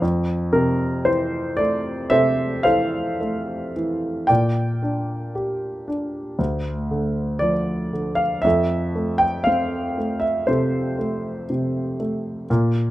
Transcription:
0, 0, Header, 1, 2, 480
1, 0, Start_track
1, 0, Key_signature, -1, "major"
1, 0, Tempo, 1041667
1, 12, Time_signature, 4, 2, 24, 8
1, 972, Tempo, 1090909
1, 1932, Tempo, 1043478
1, 3372, Tempo, 1011804
1, 5974, End_track
2, 0, Start_track
2, 0, Title_t, "Grand piano"
2, 0, Program_c, 0, 0
2, 0, Control_c, 0, 64, 127
2, 8, Note_on_c, 0, 41, 63
2, 18, Control_c, 0, 64, 0
2, 101, Control_c, 0, 64, 127
2, 243, Note_on_c, 0, 70, 65
2, 244, Note_on_c, 0, 48, 50
2, 484, Note_on_c, 0, 52, 46
2, 484, Note_on_c, 0, 72, 72
2, 491, Note_off_c, 0, 70, 0
2, 722, Note_on_c, 0, 74, 76
2, 729, Note_on_c, 0, 57, 52
2, 735, Note_off_c, 0, 72, 0
2, 966, Note_off_c, 0, 48, 0
2, 967, Note_on_c, 0, 76, 91
2, 972, Note_on_c, 0, 48, 47
2, 973, Note_on_c, 0, 72, 60
2, 975, Note_on_c, 0, 69, 63
2, 977, Note_off_c, 0, 74, 0
2, 1202, Note_off_c, 0, 72, 0
2, 1202, Note_on_c, 0, 77, 77
2, 1204, Note_off_c, 0, 69, 0
2, 1207, Note_off_c, 0, 52, 0
2, 1208, Note_on_c, 0, 72, 55
2, 1210, Note_on_c, 0, 69, 58
2, 1214, Note_off_c, 0, 76, 0
2, 1214, Note_on_c, 0, 52, 51
2, 1449, Note_off_c, 0, 57, 0
2, 1456, Note_on_c, 0, 57, 49
2, 1674, Note_off_c, 0, 77, 0
2, 1693, Note_off_c, 0, 52, 0
2, 1700, Note_on_c, 0, 52, 47
2, 1913, Note_off_c, 0, 41, 0
2, 1914, Note_off_c, 0, 72, 0
2, 1915, Note_off_c, 0, 48, 0
2, 1915, Note_off_c, 0, 69, 0
2, 1920, Note_off_c, 0, 57, 0
2, 1923, Note_on_c, 0, 79, 75
2, 1928, Note_off_c, 0, 52, 0
2, 1930, Note_on_c, 0, 74, 57
2, 1935, Note_on_c, 0, 46, 51
2, 1940, Control_c, 0, 64, 0
2, 2014, Control_c, 0, 64, 127
2, 2177, Note_on_c, 0, 62, 41
2, 2420, Note_on_c, 0, 67, 40
2, 2655, Note_off_c, 0, 62, 0
2, 2662, Note_on_c, 0, 62, 42
2, 2879, Note_off_c, 0, 46, 0
2, 2883, Note_off_c, 0, 67, 0
2, 2891, Note_off_c, 0, 62, 0
2, 2896, Note_on_c, 0, 38, 52
2, 2903, Control_c, 0, 64, 0
2, 2980, Control_c, 0, 64, 127
2, 3136, Note_on_c, 0, 50, 43
2, 3352, Note_off_c, 0, 74, 0
2, 3358, Note_on_c, 0, 74, 72
2, 3370, Note_on_c, 0, 53, 41
2, 3413, Note_off_c, 0, 79, 0
2, 3606, Note_off_c, 0, 50, 0
2, 3613, Note_on_c, 0, 50, 43
2, 3719, Note_on_c, 0, 77, 71
2, 3742, Note_off_c, 0, 74, 0
2, 3840, Note_off_c, 0, 38, 0
2, 3843, Note_off_c, 0, 53, 0
2, 3844, Note_on_c, 0, 76, 80
2, 3850, Note_off_c, 0, 50, 0
2, 3854, Note_off_c, 0, 77, 0
2, 3857, Note_on_c, 0, 41, 53
2, 3866, Control_c, 0, 64, 0
2, 3866, Note_on_c, 0, 69, 58
2, 3938, Control_c, 0, 64, 127
2, 4100, Note_on_c, 0, 57, 48
2, 4207, Note_on_c, 0, 79, 77
2, 4225, Note_off_c, 0, 76, 0
2, 4328, Note_on_c, 0, 77, 76
2, 4339, Note_off_c, 0, 79, 0
2, 4343, Note_on_c, 0, 60, 45
2, 4578, Note_off_c, 0, 57, 0
2, 4585, Note_on_c, 0, 57, 45
2, 4688, Note_on_c, 0, 76, 63
2, 4708, Note_off_c, 0, 77, 0
2, 4808, Note_off_c, 0, 69, 0
2, 4817, Note_on_c, 0, 72, 65
2, 4820, Note_off_c, 0, 76, 0
2, 4824, Note_on_c, 0, 48, 50
2, 4833, Note_on_c, 0, 69, 45
2, 5055, Note_off_c, 0, 57, 0
2, 5062, Note_on_c, 0, 57, 49
2, 5281, Note_off_c, 0, 60, 0
2, 5299, Note_off_c, 0, 48, 0
2, 5306, Note_on_c, 0, 48, 44
2, 5515, Note_off_c, 0, 72, 0
2, 5536, Note_off_c, 0, 57, 0
2, 5543, Note_on_c, 0, 57, 48
2, 5756, Note_off_c, 0, 41, 0
2, 5761, Note_off_c, 0, 69, 0
2, 5765, Note_off_c, 0, 48, 0
2, 5771, Note_off_c, 0, 57, 0
2, 5782, Control_c, 0, 64, 0
2, 5783, Note_on_c, 0, 46, 65
2, 5874, Control_c, 0, 64, 127
2, 5974, Note_off_c, 0, 46, 0
2, 5974, End_track
0, 0, End_of_file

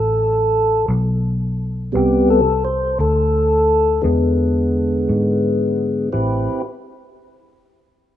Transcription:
0, 0, Header, 1, 3, 480
1, 0, Start_track
1, 0, Key_signature, 0, "minor"
1, 0, Tempo, 700935
1, 1327, Time_signature, 12, 3, 24, 8
1, 5593, End_track
2, 0, Start_track
2, 0, Title_t, "Tonewheel organ"
2, 0, Program_c, 0, 16
2, 0, Note_on_c, 0, 69, 95
2, 589, Note_off_c, 0, 69, 0
2, 1316, Note_on_c, 0, 48, 53
2, 1321, Note_on_c, 0, 55, 48
2, 1330, Note_on_c, 0, 59, 62
2, 1345, Note_on_c, 0, 67, 100
2, 1569, Note_off_c, 0, 67, 0
2, 1578, Note_on_c, 0, 69, 114
2, 1641, Note_off_c, 0, 48, 0
2, 1643, Note_off_c, 0, 55, 0
2, 1648, Note_off_c, 0, 59, 0
2, 1805, Note_off_c, 0, 69, 0
2, 1811, Note_on_c, 0, 72, 93
2, 2042, Note_off_c, 0, 72, 0
2, 2057, Note_on_c, 0, 69, 109
2, 2750, Note_on_c, 0, 50, 53
2, 2751, Note_off_c, 0, 69, 0
2, 2752, Note_on_c, 0, 56, 48
2, 2760, Note_on_c, 0, 59, 59
2, 4171, Note_off_c, 0, 50, 0
2, 4171, Note_off_c, 0, 56, 0
2, 4176, Note_off_c, 0, 59, 0
2, 4194, Note_on_c, 0, 64, 62
2, 4195, Note_on_c, 0, 60, 62
2, 4195, Note_on_c, 0, 67, 70
2, 4196, Note_on_c, 0, 71, 61
2, 4533, Note_off_c, 0, 60, 0
2, 4533, Note_off_c, 0, 64, 0
2, 4533, Note_off_c, 0, 67, 0
2, 4533, Note_off_c, 0, 71, 0
2, 5593, End_track
3, 0, Start_track
3, 0, Title_t, "Fingered electric bass"
3, 0, Program_c, 1, 33
3, 0, Note_on_c, 1, 33, 92
3, 581, Note_off_c, 1, 33, 0
3, 604, Note_on_c, 1, 35, 96
3, 1304, Note_off_c, 1, 35, 0
3, 1335, Note_on_c, 1, 36, 92
3, 2030, Note_off_c, 1, 36, 0
3, 2046, Note_on_c, 1, 38, 96
3, 2745, Note_off_c, 1, 38, 0
3, 2766, Note_on_c, 1, 40, 90
3, 3465, Note_off_c, 1, 40, 0
3, 3486, Note_on_c, 1, 44, 93
3, 4184, Note_off_c, 1, 44, 0
3, 4204, Note_on_c, 1, 33, 87
3, 4428, Note_off_c, 1, 33, 0
3, 5593, End_track
0, 0, End_of_file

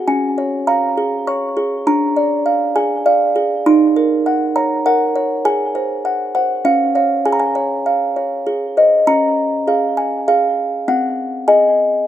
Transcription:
0, 0, Header, 1, 2, 480
1, 0, Start_track
1, 0, Key_signature, -5, "major"
1, 0, Tempo, 597610
1, 60, Time_signature, 3, 2, 24, 8
1, 5340, Tempo, 603622
1, 9653, End_track
2, 0, Start_track
2, 0, Title_t, "Music box"
2, 0, Program_c, 0, 10
2, 60, Note_on_c, 0, 80, 80
2, 61, Note_on_c, 0, 61, 51
2, 304, Note_on_c, 0, 73, 38
2, 520, Note_off_c, 0, 80, 0
2, 541, Note_on_c, 0, 77, 42
2, 541, Note_on_c, 0, 82, 83
2, 685, Note_off_c, 0, 73, 0
2, 783, Note_on_c, 0, 68, 42
2, 923, Note_off_c, 0, 77, 0
2, 999, Note_off_c, 0, 82, 0
2, 1023, Note_on_c, 0, 85, 83
2, 1024, Note_on_c, 0, 73, 45
2, 1163, Note_off_c, 0, 68, 0
2, 1258, Note_on_c, 0, 68, 46
2, 1403, Note_off_c, 0, 73, 0
2, 1464, Note_off_c, 0, 61, 0
2, 1479, Note_off_c, 0, 85, 0
2, 1497, Note_off_c, 0, 68, 0
2, 1500, Note_on_c, 0, 62, 53
2, 1502, Note_on_c, 0, 82, 91
2, 1739, Note_on_c, 0, 74, 42
2, 1974, Note_on_c, 0, 77, 48
2, 2120, Note_off_c, 0, 74, 0
2, 2189, Note_off_c, 0, 82, 0
2, 2214, Note_on_c, 0, 80, 82
2, 2215, Note_on_c, 0, 68, 49
2, 2358, Note_off_c, 0, 77, 0
2, 2445, Note_off_c, 0, 80, 0
2, 2456, Note_on_c, 0, 74, 48
2, 2456, Note_on_c, 0, 77, 84
2, 2600, Note_off_c, 0, 68, 0
2, 2696, Note_on_c, 0, 68, 49
2, 2844, Note_off_c, 0, 74, 0
2, 2910, Note_off_c, 0, 62, 0
2, 2922, Note_off_c, 0, 77, 0
2, 2940, Note_off_c, 0, 68, 0
2, 2941, Note_on_c, 0, 63, 60
2, 2942, Note_on_c, 0, 84, 109
2, 3184, Note_on_c, 0, 70, 45
2, 3423, Note_on_c, 0, 78, 50
2, 3566, Note_off_c, 0, 70, 0
2, 3633, Note_off_c, 0, 84, 0
2, 3660, Note_on_c, 0, 82, 76
2, 3661, Note_on_c, 0, 73, 46
2, 3805, Note_off_c, 0, 78, 0
2, 3890, Note_off_c, 0, 82, 0
2, 3902, Note_on_c, 0, 78, 95
2, 3903, Note_on_c, 0, 70, 50
2, 4044, Note_off_c, 0, 73, 0
2, 4141, Note_on_c, 0, 73, 51
2, 4284, Note_off_c, 0, 70, 0
2, 4347, Note_off_c, 0, 63, 0
2, 4361, Note_off_c, 0, 78, 0
2, 4378, Note_on_c, 0, 68, 62
2, 4379, Note_off_c, 0, 73, 0
2, 4379, Note_on_c, 0, 80, 97
2, 4619, Note_on_c, 0, 72, 45
2, 4859, Note_on_c, 0, 78, 48
2, 5003, Note_off_c, 0, 72, 0
2, 5071, Note_off_c, 0, 80, 0
2, 5089, Note_off_c, 0, 78, 0
2, 5098, Note_on_c, 0, 78, 74
2, 5099, Note_on_c, 0, 72, 45
2, 5311, Note_off_c, 0, 68, 0
2, 5330, Note_off_c, 0, 78, 0
2, 5339, Note_on_c, 0, 61, 54
2, 5340, Note_off_c, 0, 72, 0
2, 5341, Note_on_c, 0, 77, 82
2, 5575, Note_off_c, 0, 77, 0
2, 5581, Note_on_c, 0, 73, 39
2, 5585, Note_on_c, 0, 77, 44
2, 5798, Note_off_c, 0, 73, 0
2, 5801, Note_off_c, 0, 77, 0
2, 5807, Note_off_c, 0, 61, 0
2, 5822, Note_on_c, 0, 80, 78
2, 5823, Note_on_c, 0, 68, 50
2, 5878, Note_on_c, 0, 82, 62
2, 5879, Note_off_c, 0, 80, 0
2, 5934, Note_on_c, 0, 80, 80
2, 5935, Note_off_c, 0, 82, 0
2, 6059, Note_on_c, 0, 73, 38
2, 6303, Note_on_c, 0, 77, 41
2, 6448, Note_off_c, 0, 73, 0
2, 6545, Note_on_c, 0, 73, 36
2, 6690, Note_off_c, 0, 77, 0
2, 6756, Note_off_c, 0, 80, 0
2, 6760, Note_off_c, 0, 68, 0
2, 6785, Note_on_c, 0, 68, 51
2, 6787, Note_off_c, 0, 73, 0
2, 7028, Note_on_c, 0, 72, 35
2, 7031, Note_on_c, 0, 75, 40
2, 7246, Note_off_c, 0, 72, 0
2, 7247, Note_off_c, 0, 75, 0
2, 7255, Note_off_c, 0, 68, 0
2, 7267, Note_on_c, 0, 61, 51
2, 7268, Note_on_c, 0, 82, 92
2, 7734, Note_off_c, 0, 61, 0
2, 7747, Note_on_c, 0, 68, 42
2, 7750, Note_on_c, 0, 77, 44
2, 7959, Note_off_c, 0, 82, 0
2, 7984, Note_on_c, 0, 80, 62
2, 8194, Note_off_c, 0, 68, 0
2, 8196, Note_off_c, 0, 77, 0
2, 8215, Note_off_c, 0, 80, 0
2, 8227, Note_on_c, 0, 77, 77
2, 8228, Note_on_c, 0, 68, 42
2, 8673, Note_off_c, 0, 68, 0
2, 8686, Note_off_c, 0, 77, 0
2, 8705, Note_on_c, 0, 60, 58
2, 8706, Note_on_c, 0, 78, 79
2, 9163, Note_off_c, 0, 78, 0
2, 9168, Note_off_c, 0, 60, 0
2, 9180, Note_on_c, 0, 80, 84
2, 9181, Note_on_c, 0, 68, 42
2, 9184, Note_on_c, 0, 75, 47
2, 9626, Note_off_c, 0, 68, 0
2, 9627, Note_off_c, 0, 75, 0
2, 9638, Note_off_c, 0, 80, 0
2, 9653, End_track
0, 0, End_of_file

